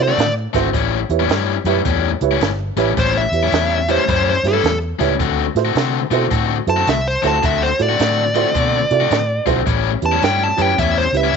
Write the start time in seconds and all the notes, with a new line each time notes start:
Already playing: C3
0.03 D5
0.08 D3 A3 C4 F#4
0.18 A2, snare, closed hi-hat
0.53 G#1 D3 A3 C4 E4 F#4 A4 C5, kick, snare, closed hi-hat
0.74 A1 A2 G3 C#4 E4, kick, closed hi-hat
1.09 E2 E4 G4 B4 C#5, closed hi-hat
1.20 A2 G3 C#4 E4
1.29 G2 A2 G3 C#4 E4, snare, closed hi-hat
1.64 F#2 A2 G3 C#4 E4 G4 B4 C#5, closed hi-hat
1.85 E2 A2 G3 C#4 E4, kick, closed hi-hat
2.21 C#2 E4 G4 B4 C#5, closed hi-hat
2.31 A2 G3 C#4 E4
2.41 G1, snare, closed hi-hat
2.76 A1 A2 G3 C#4 E4 G4 B4 C#5, snare, closed hi-hat
2.97 A1 A2 G3 C#4 E4 C5, kick, closed hi-hat
3.17 E5
3.32 E2 E4 G4 B4 C#5, closed hi-hat
3.43 A2 G3 C#4 E4
3.52 E2 A2 G3 C#4 E4, snare, closed hi-hat
3.88 A2 G3 C#4 E4 G4 B4 C5 C#5, closed hi-hat
4.08 F#2 A2 G3 C#4 E4 C5, kick, closed hi-hat
4.30 C5
4.43 G2 E4 G4 B4 C#5, snare, closed hi-hat
4.48 A4
4.53 A2 G3 C#4 E4
4.64 E2, snare, closed hi-hat
4.99 C#2 A2 G3 C#4 E4 G4 B4 C#5, kick, snare, closed hi-hat
5.20 D2 D3 A3 C4 F#4, kick, closed hi-hat
5.55 A2 E4 F#4 A4 C5, snare, closed hi-hat
5.65 D3 A3 C4 F#4
5.75 C3 D3 A3 C4 F#4, snare, closed hi-hat
6.11 B2 D3 A3 C4 E4 F#4 A4 C5, closed hi-hat
6.31 A2 D3 A3 C4 F#4, kick, closed hi-hat
6.67 F#2 E4 F#4 A4 C5 A5, closed hi-hat
6.76 D3 A3 C4 F#4
6.87 C2 E5, snare, closed hi-hat
7.08 C5
7.22 D2 D3 A3 C4 E4 F#4 A4 C5, snare, closed hi-hat
7.27 A5
7.43 D2 D3 A3 C4 F#4 E5, kick, closed hi-hat
7.63 C5
7.78 A2 E4 F#4 A4 D5, snare, closed hi-hat
7.89 D3 A3 C4 F#4
7.99 A2 D3 A3 C4 F#4, snare, closed hi-hat
8.35 D3 A3 C4 E4 F#4 A4 C5, closed hi-hat
8.55 B2 D3 A3 C4 F#4, kick, closed hi-hat
8.91 C3 E4 F#4 A4 D5, closed hi-hat
9.00 D3 A3 C4 F#4
9.11 A2, snare, closed hi-hat
9.46 B1 D3 A3 C4 E4 F#4 A4 C5, kick, closed hi-hat
9.66 A1 A2 G3 C#4 E4, kick, closed hi-hat
10.01 E2 C#4 E4 G4 B4, closed hi-hat
10.06 A5
10.12 A2 G3 C#4 E4
10.22 G2 A2 G3 C#4 E4 G5, snare, closed hi-hat
10.44 A5
10.56 F#2 A2 G3 C#4 E4 G4 B4, closed hi-hat
10.62 G5
10.78 E2 A2 G3 C#4 E4 E5, kick, closed hi-hat
10.98 C5
11.12 C#2 C#4 E4 G4 B4, closed hi-hat
11.17 E5
11.24 A2 G3 C#4 E4
11.33 G1